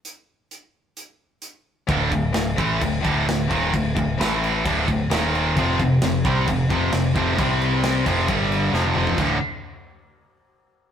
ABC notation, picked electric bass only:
X:1
M:4/4
L:1/8
Q:1/4=132
K:Dm
V:1 name="Picked electric bass" clef=bass
z8 | D,,, D,,, D,,, A,,, D,,, D,,, D,,, _E,,, | D,,, D,,, A,,,2 D,,, D,,, _E,,,2 | F,,, F,,, F,,, C,, F,,, F,,, F,,, F,,, |
C,,3 F,,, G,,,2 F,,, F,,, | D,,, z6 z |]